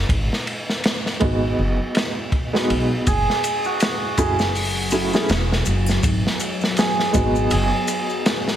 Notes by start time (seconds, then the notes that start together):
0.09 G#1, kick, ride
0.33 snare
0.47 ride
0.69 snare
0.84 snare, ride
1.06 snare
1.20 G#1 G#3 B3 D#4 F#4, kick, ride
1.59 F#1
1.95 snare, ride
2.32 kick, ride
2.53 G#3 B3 D#4 F#4, snare
2.70 B1, ride
3.06 F#1 F#3 G#4 G#5, kick, ride, maracas
3.30 snare
3.44 ride, maracas
3.64 F#4, maracas
3.80 snare, ride, maracas
4.17 F#1 A3 C#4 E4 F#4 G#4, kick, ride, maracas
4.39 snare, maracas
4.55 open hi-hat, maracas
4.91 A3 C#4 E4 F#4, ride, maracas
5.13 A3 C#4 E4 G#4, snare, maracas
5.29 E1, snare, ride, maracas
5.52 snare
5.66 F#1, ride, maracas
5.86 snare, triangle, maracas
6.03 G#1, kick, ride, maracas
6.27 snare
6.40 ride, maracas
6.61 snare, maracas
6.77 G#4, snare, ride, maracas
7.00 snare
7.13 G#1 G#3 B3 D#4 F#4, kick, ride, maracas
7.36 maracas
7.50 F#1 G#4, ride, maracas
7.88 ride, maracas
8.10 maracas
8.26 snare, ride, maracas
8.48 snare